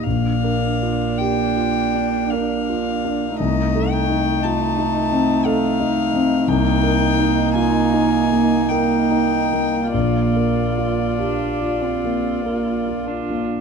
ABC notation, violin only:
X:1
M:3/4
L:1/8
Q:1/4=53
K:Bb
V:1 name="Violin"
f2 g2 f2 | e g a2 f2 | [K:Bbmix] g2 a2 g2 | d4- d z |]